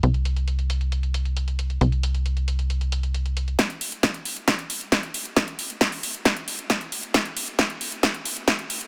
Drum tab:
HH |xxxxxxxxxxxxxxxx|xxxxxxxxxxxxxxxx|xxoxxxoxxxoxxxox|xxoxxooxxxoxxxox|
SD |----------------|----------------|o---o---o---o---|o---o---o---o---|
BD |----------------|----------------|o---o---o---o---|o---o---o---o---|

HH |xxoxxxoxxxoxxxox|
SD |o---o---o---o---|
BD |o---o---o---o---|